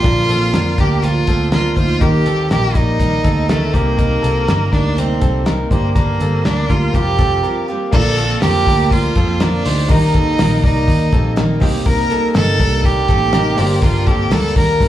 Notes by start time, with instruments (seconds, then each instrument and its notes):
Already playing: violin F4
0.03 picked electric bass A#1, steel-string acoustic guitar A#2 D3 F3 A#3 D4, upright piano D4 F4 A#4, clean electric guitar D4 A#4, kick, closed hi-hat
0.29 picked electric bass A#1, steel-string acoustic guitar F3 A#3 D4, clean electric guitar C4 A4, closed hi-hat
0.53 picked electric bass F2, steel-string acoustic guitar D3 F3 A#3 D4, clean electric guitar D4 A#4, snare, closed hi-hat
0.78 picked electric bass D2, steel-string acoustic guitar F3 A#3 D4, clean electric guitar D4 A#4, violin G4, kick, closed hi-hat
1.02 steel-string acoustic guitar A#2 D3 F3 A#3 D4, violin F4, closed hi-hat
1.27 picked electric bass D2, steel-string acoustic guitar F3 A#3 D4, clean electric guitar C4 A4, kick, closed hi-hat
1.52 steel-string acoustic guitar D3 F3 A#3 D4, clean electric guitar D4 A#4, violin F4, snare, closed hi-hat
1.76 picked electric bass D2, steel-string acoustic guitar F3 A#3 D4, clean electric guitar D#4 C5, violin F4, kick, closed hi-hat
2.00 picked electric bass D#2, steel-string acoustic guitar D#3 G3 A#3 D#4, upright piano D#4 G4 A#4, clean electric guitar D#4 A#4, violin G4, kick, closed hi-hat
2.26 picked electric bass D#2, steel-string acoustic guitar G3 A#3, clean electric guitar C4 A4, closed hi-hat
2.50 picked electric bass A#1, steel-string acoustic guitar D#3 G3 A#3 D#4, clean electric guitar D#4 A#4, violin G4, snare, closed hi-hat
2.74 picked electric bass A#1, steel-string acoustic guitar G3 A#3 D#4, violin D#4, clean electric guitar A#4 D5, kick, snare, closed hi-hat
2.99 steel-string acoustic guitar D#3 G3 A#3 D#4, kick, closed hi-hat
3.24 picked electric bass D2, steel-string acoustic guitar G3 A#3 D#4, clean electric guitar C4 A4, kick, closed hi-hat
3.49 steel-string acoustic guitar D#3 G3 A#3 D#4, violin A3, clean electric guitar D#4 A#4, snare, closed hi-hat
3.72 picked electric bass C2, steel-string acoustic guitar G3 A#3 D#4, violin A#3, clean electric guitar A#3 G4, upright piano C4 D#4 A#4, kick, closed hi-hat
3.98 steel-string acoustic guitar C3 G3 A#3 D#4, clean electric guitar D#4 A#4, kick, closed hi-hat
4.22 picked electric bass C2, steel-string acoustic guitar G3 A#3 D#4, clean electric guitar C4 A4, closed hi-hat
4.47 picked electric bass G1, steel-string acoustic guitar C3 G3 A#3 D#4, clean electric guitar D#4 A#4, snare, closed hi-hat
4.72 picked electric bass D2, steel-string acoustic guitar G3 A#3 D#4, clean electric guitar D4 A#4, violin D4, kick, snare, closed hi-hat
4.97 steel-string acoustic guitar C3 G3 A#3 D#4, violin C4, closed hi-hat
5.21 picked electric bass C2, steel-string acoustic guitar G3 A#3 D#4, clean electric guitar C4 A4, kick, closed hi-hat
5.46 steel-string acoustic guitar C3 G3 A#3 D#4, clean electric guitar D#4 A#4, snare, closed hi-hat
5.69 picked electric bass G1, steel-string acoustic guitar G3 A#3 D4, upright piano A#3 D4 G4, violin A#3, clean electric guitar G4 C5, kick, closed hi-hat
5.95 picked electric bass G1, steel-string acoustic guitar G2 D3 G3 A#3 D4, violin A#3, clean electric guitar D4 A#4, kick, closed hi-hat
6.20 picked electric bass G1, steel-string acoustic guitar G3 A#3 D4, clean electric guitar C4 A4, closed hi-hat
6.45 picked electric bass D2, steel-string acoustic guitar D3 G3 A#3 D4, violin D4, clean electric guitar D4 A#4, snare, closed hi-hat
6.69 picked electric bass D2, steel-string acoustic guitar G3 A#3 D4, violin F4, clean electric guitar F4 A#4, kick, closed hi-hat
6.92 picked electric bass F1, steel-string acoustic guitar F3 G3 C4 F4, upright piano C4 F4 G4, violin G4, kick, closed hi-hat
7.19 picked electric bass F1, steel-string acoustic guitar G3 C4 F4, clean electric guitar C4 A4, kick, closed hi-hat
7.43 steel-string acoustic guitar F3 G3 C4 F4, clean electric guitar F4 A#4
7.68 steel-string acoustic guitar G3 C4 F4, clean electric guitar A#3 G4
7.91 picked electric bass A#1, steel-string acoustic guitar A#2 D3 F3 A#3 F4, upright piano A#3 D4 F4 D5, clean electric guitar D4 A#4, violin A4, kick, crash
8.17 steel-string acoustic guitar F3 A#3 F4, clean electric guitar C4 A4, hi-hat pedal, open hi-hat
8.42 picked electric bass F2, steel-string acoustic guitar A#2 D3 F3 A#3 F4, clean electric guitar D4 A#4, violin G4, snare, hi-hat pedal, open hi-hat
8.66 picked electric bass D2, steel-string acoustic guitar F3 A#3 F4, clean electric guitar D4 A#4, kick, snare, hi-hat pedal, open hi-hat
8.91 steel-string acoustic guitar D3 F3 A#3 F4, violin F4, kick, hi-hat pedal, open hi-hat
9.15 picked electric bass F2, steel-string acoustic guitar F3 A#3 F4, clean electric guitar C4 A4, kick, hi-hat pedal, open hi-hat
9.40 steel-string acoustic guitar A#2 D3 F3 A#3 F4, violin D4, clean electric guitar D4 A#4, snare, hi-hat pedal, open hi-hat
9.65 picked electric bass D2, steel-string acoustic guitar F3 A#3 F4, clean electric guitar D#4 C5, hi-hat pedal, open hi-hat
9.88 picked electric bass D#2, steel-string acoustic guitar D#3 G3 A#3 D#4, upright piano A#3 D#4 G4 A#4, clean electric guitar D#4 A#4, violin D#4, kick, hi-hat pedal, open hi-hat
10.14 steel-string acoustic guitar G3 D#4, clean electric guitar C4 A4, kick, hi-hat pedal, open hi-hat
10.38 picked electric bass A#1, steel-string acoustic guitar D#3 G3 A#3 D#4, clean electric guitar D#4 A#4, snare, hi-hat pedal, open hi-hat
10.63 picked electric bass C2, steel-string acoustic guitar G3 A#3 D#4, violin D#4, clean electric guitar A#4 D5, kick, hi-hat pedal, open hi-hat
10.87 picked electric bass D#2, steel-string acoustic guitar D#3 G3 A#3 D#4, kick, hi-hat pedal, open hi-hat
11.12 picked electric bass A#1, steel-string acoustic guitar G3 A#3 D#4, clean electric guitar C4 A4, kick, hi-hat pedal, open hi-hat
11.36 steel-string acoustic guitar D#3 G3 A#3 D#4, clean electric guitar D#4 A#4, snare, hi-hat pedal, open hi-hat
11.60 picked electric bass C2, steel-string acoustic guitar G3 A#3 D#4, clean electric guitar A#3 G4, upright piano A#3 C4 D#4 G4, kick, hi-hat pedal, open hi-hat
11.85 steel-string acoustic guitar C3 G3 A#3 D#4, clean electric guitar D#4 A#4, violin A#4, kick, hi-hat pedal, open hi-hat
12.10 steel-string acoustic guitar G3 A#3 D#4, clean electric guitar C4 A4, hi-hat pedal, open hi-hat
12.35 picked electric bass G1, steel-string acoustic guitar C3 G3 A#3 D#4, clean electric guitar D#4 A#4, violin A4, snare, hi-hat pedal, open hi-hat
12.59 picked electric bass C2, steel-string acoustic guitar G3 A#3, clean electric guitar D4 A#4, kick, snare, hi-hat pedal, open hi-hat
12.84 steel-string acoustic guitar C3 G3 A#3 D#4, violin G4, kick, hi-hat pedal, open hi-hat
13.08 picked electric bass A1, steel-string acoustic guitar G3 A#3 D#4, clean electric guitar C4 A4, kick, hi-hat pedal, open hi-hat
13.33 steel-string acoustic guitar C3 G3 A#3 D#4, clean electric guitar D#4 A#4, snare, hi-hat pedal, open hi-hat
13.55 picked electric bass G1, upright piano A#3 D4 G4 A#4, steel-string acoustic guitar D4, clean electric guitar C5, hi-hat pedal, open hi-hat
13.59 steel-string acoustic guitar G3 A#3, clean electric guitar G4
13.82 picked electric bass G1, steel-string acoustic guitar G2 D3 G3 A#3 D4, clean electric guitar D4 A#4, violin F4, kick, hi-hat pedal, open hi-hat
14.07 steel-string acoustic guitar G3 A#3 D4, clean electric guitar C4 A4, violin G4, kick, hi-hat pedal, open hi-hat
14.31 picked electric bass D2, steel-string acoustic guitar G2 D3 G3 A#3 D4, clean electric guitar D4 A#4, violin A4, snare, hi-hat pedal, open hi-hat
14.55 picked electric bass D#2, steel-string acoustic guitar G3 A#3 D4, clean electric guitar D4 A#4, violin A#4, kick, hi-hat pedal, open hi-hat
14.80 picked electric bass G2, steel-string acoustic guitar D3 G3 A#3 D4, kick, hi-hat pedal, open hi-hat